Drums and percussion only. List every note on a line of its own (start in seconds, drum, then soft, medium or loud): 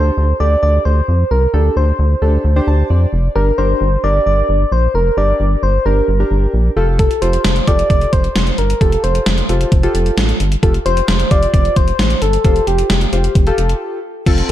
6.99 kick loud
6.99 closed hi-hat medium
7.11 closed hi-hat soft
7.22 closed hi-hat medium
7.33 closed hi-hat medium
7.45 snare loud
7.45 closed hi-hat medium
7.56 closed hi-hat medium
7.67 kick medium
7.67 closed hi-hat medium
7.79 closed hi-hat medium
7.90 kick medium
7.90 closed hi-hat medium
8.01 closed hi-hat soft
8.13 kick medium
8.13 closed hi-hat medium
8.24 closed hi-hat soft
8.36 snare loud
8.36 closed hi-hat medium
8.47 closed hi-hat soft
8.58 closed hi-hat medium
8.70 closed hi-hat medium
8.81 kick loud
8.81 closed hi-hat medium
8.92 closed hi-hat soft
9.04 closed hi-hat medium
9.15 closed hi-hat medium
9.26 snare loud
9.26 closed hi-hat medium
9.38 closed hi-hat soft
9.49 closed hi-hat medium
9.61 closed hi-hat medium
9.72 kick medium
9.72 closed hi-hat medium
9.83 closed hi-hat soft
9.95 closed hi-hat medium
10.06 closed hi-hat soft
10.18 snare loud
10.18 closed hi-hat medium
10.29 closed hi-hat soft
10.40 closed hi-hat medium
10.52 closed hi-hat medium
10.63 kick loud
10.63 closed hi-hat medium
10.74 closed hi-hat soft
10.86 closed hi-hat medium
10.97 closed hi-hat medium
11.08 snare loud
11.08 closed hi-hat medium
11.20 closed hi-hat soft
11.31 kick medium
11.31 closed hi-hat medium
11.43 closed hi-hat medium
11.54 kick medium
11.54 closed hi-hat medium
11.65 closed hi-hat soft
11.76 kick medium
11.76 closed hi-hat medium
11.88 closed hi-hat soft
11.99 snare loud
11.99 closed hi-hat medium
12.10 closed hi-hat soft
12.22 closed hi-hat medium
12.33 closed hi-hat medium
12.45 kick loud
12.45 closed hi-hat medium
12.56 closed hi-hat soft
12.67 closed hi-hat medium
12.78 closed hi-hat medium
12.90 snare loud
12.90 closed hi-hat medium
13.01 closed hi-hat medium
13.13 closed hi-hat medium
13.24 closed hi-hat medium
13.35 kick medium
13.35 closed hi-hat medium
13.47 closed hi-hat soft
13.58 closed hi-hat medium
13.69 closed hi-hat soft
14.26 kick loud
14.26 closed hi-hat medium
14.26 crash loud
14.38 closed hi-hat soft